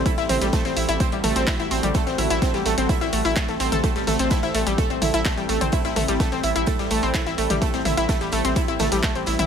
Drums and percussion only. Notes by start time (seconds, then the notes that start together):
0.06 kick, closed hi-hat
0.18 snare, closed hi-hat
0.29 snare, closed hi-hat, open hi-hat, mid tom
0.41 snare, closed hi-hat
0.53 kick, snare, closed hi-hat
0.65 snare, closed hi-hat
0.77 closed hi-hat, open hi-hat
0.89 snare, closed hi-hat
1.00 kick, closed hi-hat
1.12 closed hi-hat
1.24 closed hi-hat, open hi-hat, mid tom
1.36 snare, closed hi-hat
1.47 kick, snare, clap, closed hi-hat, open hi-hat
1.59 snare, closed hi-hat
1.71 closed hi-hat, open hi-hat
1.83 closed hi-hat, mid tom
1.94 kick, closed hi-hat
2.07 snare, closed hi-hat
2.18 closed hi-hat, open hi-hat, mid tom
2.30 snare, closed hi-hat
2.42 kick, snare, closed hi-hat
2.54 snare, closed hi-hat
2.66 closed hi-hat, open hi-hat
2.78 snare, closed hi-hat
2.89 kick, closed hi-hat
3.01 snare, closed hi-hat
3.12 closed hi-hat, open hi-hat
3.25 open hi-hat
3.36 kick, snare, clap, closed hi-hat
3.48 snare, closed hi-hat
3.60 snare, closed hi-hat, open hi-hat
3.72 snare, closed hi-hat, mid tom
3.84 kick, closed hi-hat
3.96 snare, closed hi-hat
4.07 snare, closed hi-hat, open hi-hat, mid tom
4.19 snare, closed hi-hat
4.30 kick, snare, closed hi-hat
4.43 snare, closed hi-hat
4.54 closed hi-hat, open hi-hat
4.67 snare, closed hi-hat
4.78 kick, closed hi-hat
4.90 closed hi-hat
5.02 closed hi-hat, open hi-hat, mid tom
5.14 snare, closed hi-hat
5.25 kick, snare, clap, closed hi-hat, open hi-hat
5.37 snare, closed hi-hat
5.49 closed hi-hat, open hi-hat
5.61 closed hi-hat, mid tom
5.72 kick, closed hi-hat
5.85 snare, closed hi-hat
5.96 closed hi-hat, open hi-hat, mid tom
6.08 snare, closed hi-hat
6.20 kick, snare, closed hi-hat
6.31 snare, closed hi-hat
6.43 closed hi-hat, open hi-hat
6.56 closed hi-hat
6.66 kick, closed hi-hat
6.79 snare, closed hi-hat
6.90 closed hi-hat, open hi-hat
7.03 open hi-hat
7.14 kick, snare, clap, closed hi-hat
7.26 snare, closed hi-hat
7.38 closed hi-hat, open hi-hat
7.50 snare, closed hi-hat, mid tom
7.62 kick, closed hi-hat
7.74 snare, closed hi-hat
7.85 snare, closed hi-hat, open hi-hat, mid tom
7.97 snare, closed hi-hat
8.09 kick, snare, closed hi-hat
8.21 snare, closed hi-hat
8.32 closed hi-hat, open hi-hat
8.45 snare, closed hi-hat
8.56 kick, closed hi-hat
8.68 closed hi-hat
8.79 snare, closed hi-hat, open hi-hat, mid tom
8.92 snare, closed hi-hat
9.02 kick, snare, clap, closed hi-hat, open hi-hat
9.15 snare, closed hi-hat
9.26 snare, closed hi-hat, open hi-hat
9.39 snare, closed hi-hat, mid tom